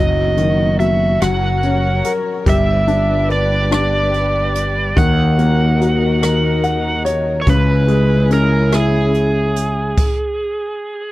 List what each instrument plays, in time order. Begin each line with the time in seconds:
Already playing: fretless electric bass F#1, string section D#3 B3 F#4, grand piano F#3
0.00 electric slide guitar D#5
0.37 grand piano D#3, closed hi-hat
0.80 grand piano F#3, electric slide guitar E5, closed hi-hat
1.21 fretless electric bass F#1, string section F#3 A#4 C#5, grand piano F#3, electric slide guitar F#5, cross-stick, closed hi-hat
1.63 grand piano C#4, closed hi-hat
2.04 grand piano A#4, closed hi-hat
2.46 fretless electric bass G1, grand piano G3, string section G3 G4 B4 D5, electric slide guitar E5, kick, closed hi-hat
2.88 grand piano D4, closed hi-hat
3.29 grand piano B4, electric slide guitar D5, closed hi-hat
3.71 grand piano D4, electric slide guitar D5, cross-stick, closed hi-hat
4.14 closed hi-hat
4.55 closed hi-hat
4.96 fretless electric bass D#2, grand piano D#3, string section D#3 D#4 F#4 A#4, electric slide guitar F#5, kick, closed hi-hat
5.39 grand piano A#3, closed hi-hat
5.80 grand piano F#4, closed hi-hat
6.22 grand piano A#4, cross-stick, closed hi-hat
6.63 grand piano F#5, closed hi-hat
7.05 grand piano C#5, closed hi-hat
7.42 string section G#4, electric slide guitar C#5
7.46 fretless electric bass C#2, string section C#3 C#4 E4, grand piano C#3, electric slide guitar B4, kick, closed hi-hat
7.88 grand piano G#3, closed hi-hat
8.30 grand piano C#4, electric slide guitar A#4, closed hi-hat
8.72 grand piano E4, electric slide guitar G#4, cross-stick, closed hi-hat
9.14 closed hi-hat
9.56 closed hi-hat
9.97 kick, crash